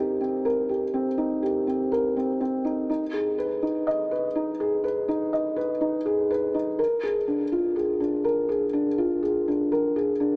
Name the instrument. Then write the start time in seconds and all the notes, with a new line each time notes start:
felt piano
Already playing: C4 D#4 G4 A#4
0.21 C4
0.45 A#4
0.69 G4
0.94 C4
1.18 D#4
1.43 G4
1.67 C4
1.92 A#4
2.16 C4
2.41 C4
2.65 D#4
2.89 D#4
3.13 G#4
3.38 B4
3.62 D#4
3.87 D#5
4.11 B4
4.35 D#4
4.60 G#4
4.84 B4
5.08 D#4
5.33 D#5
5.56 B4
5.81 D#4
6.06 G#4
6.31 B4
6.54 D#4
6.79 A#4
7.03 G#4
7.28 D4
7.52 F4
7.76 G#4
8.00 D4
8.24 A#4
8.49 G#4
8.73 D4
8.98 F4
9.23 G#4
9.48 D4
9.72 A#4
9.96 G#4
10.20 D4